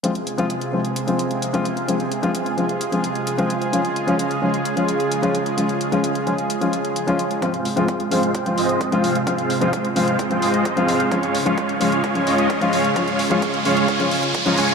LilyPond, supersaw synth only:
\new Staff \with { instrumentName = "Supersaw synth" } { \time 4/4 \key f \minor \tempo 4 = 130 r1 | r1 | r1 | r1 |
<aes c' f' c'' f''>8 r16 <aes c' f' c'' f''>8 r16 <aes c' f' c'' f''>8 <aes c' f' c'' g''>8 <aes c' f' c'' ees''>8. <aes c' f' c'' f''>8 r16 | <aes c' f' c'' f''>8 r16 <aes c' f' c'' f''>8 r16 <aes c' f' c'' f''>8 <aes c' f' c'' g''>8 <aes c' f' c'' ees''>8. <aes c' f' c'' f''>8 r16 | <aes des' f' des'' f''>8 r16 <aes des' f' des'' f''>8 r16 <aes des' f' des'' f''>8 <aes des' f' des'' aes''>8 <aes des' f' des'' ees''>8. <aes des' f' des'' f''>8 r16 | <aes des' f' des'' f''>8 r16 <aes des' f' des'' f''>8 r16 <aes des' f' des'' f''>8 <aes des' f' des'' aes''>8 r8. <aes des' f' des'' bes''>16 <aes des' f' des'' aes''>8 | }